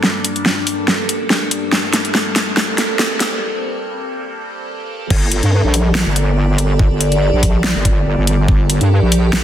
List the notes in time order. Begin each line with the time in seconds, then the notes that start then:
Already playing: G2 G3 A#3 D4 A4
0.03 snare
0.25 closed hi-hat
0.36 closed hi-hat
0.46 snare
0.67 open hi-hat
0.88 snare
1.09 closed hi-hat
1.30 snare
1.51 closed hi-hat
1.72 C4, snare
1.93 snare, closed hi-hat
2.05 closed hi-hat
2.15 snare
2.36 snare, open hi-hat
2.57 snare
2.78 snare, closed hi-hat
2.99 snare
3.20 snare, closed hi-hat
5.10 G1 G3 G4 A4 A#4 D5, kick, crash
5.32 closed hi-hat
5.43 G2, closed hi-hat
5.64 A#1
5.74 open hi-hat
5.95 snare
6.06 G1
6.16 closed hi-hat
6.58 closed hi-hat
6.79 kick
6.91 G1
7.01 closed hi-hat
7.12 closed hi-hat
7.33 A#1
7.43 kick, open hi-hat
7.64 snare
7.75 G1
7.85 kick, closed hi-hat
8.06 G1
8.18 G1
8.27 closed hi-hat
8.48 G1 G5, kick
8.70 closed hi-hat
8.81 G2, closed hi-hat
9.02 A#1
9.12 open hi-hat
9.33 snare